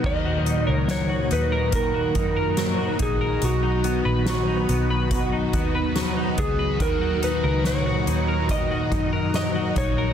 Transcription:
0.00 1.72 D#3 medium
0.00 0.13 B3 soft
0.00 0.25 D#4 soft
0.04 0.64 D#2 medium
0.04 3.39 A#2 medium
0.04 3.39 D#3 medium
0.04 10.13 F#3 medium
0.04 10.13 D#4 medium
0.04 10.13 F#4 medium
0.04 0.68 D#5 medium
0.04 kick loud
0.04 crash medium
0.25 1.09 F#4 medium
0.46 1.30 D#4 medium
0.46 closed hi-hat soft
0.67 1.28 C#2 medium
0.67 1.51 A#4 medium
0.67 0.90 C#5 medium
0.88 2.57 F#3 medium
0.88 1.32 C#5 medium
0.88 snare loud
0.88 closed hi-hat medium
1.09 1.94 F#4 medium
1.31 2.11 D#2 medium
1.31 2.15 D#4 medium
1.31 1.75 B4 medium
1.31 closed hi-hat soft
1.52 2.35 A#4 medium
1.72 5.22 D#3 medium
1.72 2.97 A#4 medium
1.72 kick medium
1.72 closed hi-hat medium
1.94 2.78 F#4 medium
2.15 2.96 F#2 medium
2.15 2.99 D#4 medium
2.15 kick medium
2.15 closed hi-hat soft
2.36 3.20 A#4 medium
2.57 4.26 F#3 medium
2.57 snare medium
2.57 closed hi-hat medium
2.78 3.62 F#4 medium
2.99 3.40 A#1 medium
2.99 3.63 D#4 medium
2.99 3.45 G#4 medium
2.99 kick loud
2.99 closed hi-hat medium
3.21 3.51 A#4 medium
3.42 4.02 B1 medium
3.42 10.13 D#3 medium
3.42 6.77 B3 medium
3.42 4.28 F#4 medium
3.42 closed hi-hat medium
3.63 4.47 D#4 medium
3.84 4.68 B3 medium
3.84 closed hi-hat soft
4.05 4.66 A#1 medium
4.05 4.89 B4 medium
4.26 5.95 F#3 medium
4.26 5.93 F#4 medium
4.26 snare loud
4.26 closed hi-hat medium
4.48 5.32 D#4 medium
4.69 5.49 B1 medium
4.69 5.52 B3 medium
4.69 closed hi-hat medium
4.90 5.74 B4 medium
5.11 6.89 B2 medium
5.11 kick medium
5.11 closed hi-hat medium
5.33 6.16 D#4 medium
5.53 6.34 D#2 medium
5.53 6.37 B3 medium
5.53 kick medium
5.53 closed hi-hat soft
5.75 6.58 B4 medium
5.96 7.64 F#3 medium
5.96 snare medium
5.96 closed hi-hat medium
6.17 7.01 D#4 medium
6.38 6.78 C#2 medium
6.38 6.89 B3 medium
6.38 6.78 G#4 medium
6.38 kick loud
6.38 closed hi-hat medium
6.59 6.89 B4 medium
6.80 7.40 D#2 loud
6.80 10.13 A#2 medium
6.80 8.49 D#3 medium
6.80 7.24 A#4 medium
6.80 kick loud
6.80 closed hi-hat medium
7.01 7.85 F#4 medium
7.22 8.06 D#4 medium
7.22 7.66 B4 medium
7.22 closed hi-hat soft
7.43 8.04 C#2 medium
7.43 8.27 A#4 medium
7.65 9.34 F#3 medium
7.65 8.51 C#5 medium
7.65 snare loud
7.65 closed hi-hat medium
7.86 8.70 F#4 medium
8.07 8.87 D#2 medium
8.07 8.91 D#4 medium
8.07 closed hi-hat medium
8.28 9.12 A#4 medium
8.49 10.13 D#3 medium
8.49 9.34 D#5 loud
8.49 kick medium
8.49 closed hi-hat medium
8.71 9.55 F#4 medium
8.92 9.72 F#2 medium
8.92 9.76 D#4 medium
8.92 kick medium
8.92 closed hi-hat soft
9.13 9.97 A#4 medium
9.34 10.13 F#3 medium
9.34 9.77 D#5 loud
9.34 snare medium
9.34 closed hi-hat medium
9.55 10.13 F#4 medium
9.76 10.13 A#1 medium
9.76 10.13 D#4 medium
9.76 10.13 C#5 medium
9.76 kick loud
9.76 closed hi-hat medium
9.98 10.13 A#4 medium

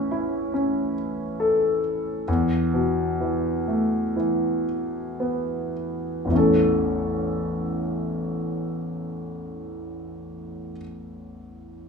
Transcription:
0.00 2.24 A2 medium
0.00 0.93 E3 soft
0.00 0.52 C#4 soft
0.11 1.80 E4 soft
0.54 2.24 C#4 soft
1.40 2.25 A4 soft
2.28 6.26 E2 medium
2.74 4.64 B2 soft
3.21 4.15 E3 soft
3.68 5.71 A3 soft
4.16 6.27 E3 soft
5.20 6.28 B3 soft
6.25 10.71 A1 soft
6.25 10.73 E2 soft
6.30 10.76 E3 soft
6.30 10.78 A3 soft
6.35 10.80 C#4 soft
6.35 10.83 A4 soft

